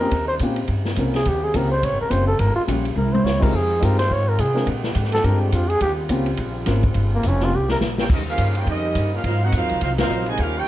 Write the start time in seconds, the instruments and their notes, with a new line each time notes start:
Already playing: upright bass F2, trombone section D#4
0.00 grand piano A#3 C4 C#4 F4 G4, muted trumpet A#4
0.11 upright bass D#2, trombone section C#3 G3 C4, kick, ride
0.28 muted trumpet C5
0.39 upright bass A#2, grand piano A#3 C4 C#4 F4, kick, hi-hat pedal, ride
0.44 grand piano G4
0.56 ride
0.68 upright bass G2, kick, ride
0.85 snare
0.96 upright bass C2, grand piano A#3 C4 C#4 F4 A#4, kick, hi-hat pedal, ride
1.14 muted trumpet G#4, snare, ride
1.25 upright bass D#2, muted trumpet G4, kick, ride
1.44 muted trumpet G#4
1.54 upright bass C#2, grand piano A#3 C4 C#4 F4 G4, muted trumpet A#4, kick, hi-hat pedal, ride
1.72 muted trumpet C5
1.82 upright bass A#1, muted trumpet C#5, kick, ride
1.92 upright bass G1
2.01 upright bass D#1, muted trumpet A#4
2.09 upright bass F#1, grand piano A#3 C4 C#4 F4 G4, muted trumpet C5, kick, hi-hat pedal, ride
2.28 muted trumpet A4
2.38 upright bass G1, trombone section C#3 A#3 F4, muted trumpet A#4, kick, ride
2.56 muted trumpet F4
2.67 upright bass A#1, grand piano G3 A#3 C#4 F4 G4, kick, hi-hat pedal, ride
2.85 ride
2.96 upright bass C2, trombone section C4 E4, muted trumpet A#4, high tom
3.13 muted trumpet C5, high tom
3.24 upright bass C#2, muted trumpet C#5, snare, hi-hat pedal
3.40 grand piano G#3 C4 D#4 F4 G4, muted trumpet A#4, kick, crash
3.54 upright bass F2, trombone section D#3 G#3 F4, muted trumpet G#4, kick
3.80 upright bass G2, grand piano G#3 C4 D#4 F4 G4, kick, hi-hat pedal, ride
3.84 muted trumpet A#4
3.99 muted trumpet C5, snare, ride
4.11 upright bass G#2, muted trumpet C#5, kick
4.29 muted trumpet A#4
4.39 upright bass C3, muted trumpet G#4, kick, hi-hat pedal, ride
4.54 grand piano G#3 C4 D4 F4 A#4, snare
4.67 upright bass A#2, trombone section D3 G4, kick, ride
4.84 snare
4.95 upright bass G#2, kick, hi-hat pedal, ride
5.05 snare
5.12 muted trumpet A4, snare, ride
5.22 upright bass G2, grand piano G#3 C4 D4 F4 G4, muted trumpet A#4, kick, ride
5.42 muted trumpet D4
5.52 upright bass F2, muted trumpet F4, kick, hi-hat pedal, ride
5.69 muted trumpet G#4, ride
5.81 upright bass D#2, trombone section C#3 G3 C4 F4, muted trumpet G4, kick, ride
6.09 upright bass C#2, grand piano A#3 C4 C#4 F4 G4, kick, hi-hat pedal, ride
6.26 ride
6.37 upright bass A#1, kick, ride
6.66 upright bass G#1, grand piano A#3 C4 C#4 F4 A#4, kick, snare, hi-hat pedal, ride
6.83 kick, ride
6.94 upright bass G1, kick, ride
7.15 muted trumpet A#3
7.23 upright bass F1, kick, hi-hat pedal, ride
7.28 muted trumpet C#4
7.40 grand piano A#3 C4 C#4 F4 G4, snare
7.44 muted trumpet F4
7.53 upright bass C2, muted trumpet G4
7.69 muted trumpet A#4, snare
7.80 upright bass A#1, snare, hi-hat pedal
7.98 trombone section A#3 C#4 G4, trumpet section F4 A#4 C#5 G5, snare
8.10 upright bass D#2, trombone section C#3 G3 A#3 D#4 C5, trumpet section C#4 G4 A#4 D#5, kick, crash
8.29 trombone section A#3 C#4 F4, trumpet section C#4 G4 A#4 F5
8.38 upright bass G2, kick, hi-hat pedal, ride
8.55 trombone section A#3 C#4 G4, trumpet section F4 A#4 C#5 G5, ride
8.66 upright bass F2, trombone section G3 A#3 D#4, trumpet section C#4 G4 A#4 D#5, kick, ride
8.95 upright bass G2, kick, hi-hat pedal, ride
9.13 trombone section A#3 C#4 F4, trumpet section C#4 G4 A#4 F5
9.22 upright bass G#2, trombone section C3 F#3 A#3 C4 F4, trumpet section D#4 A#4 C5 F5, kick, ride
9.42 trombone section C4 D#4 F#4, trumpet section D#4 A#4 C5 F#5
9.52 upright bass F2, trombone section F#3 C4 F4, kick, hi-hat pedal, ride
9.57 trumpet section D#4 A#4 C5 F5
9.62 upright bass D#2
9.69 upright bass C2, ride
9.81 upright bass C2, trombone section F#3 C4 F4, trumpet section D#4 A#4 C5 F5, kick, ride
9.98 trombone section F#3 C4 F4, trumpet section D#4 A#4 C5 F5, snare, ride
10.09 upright bass A#1, hi-hat pedal
10.26 trombone section C3 D#3 G#3, trumpet section F#4 C5 D#5 G#5, ride
10.37 upright bass D#2, trombone section C#3 G3 A#3 C5, trumpet section A#4 F5, kick, ride
10.41 trumpet section C#4 G4, trombone section C#4 F4
10.57 trombone section A#3 C#4 G4, trumpet section F4 A#4 C#5 G5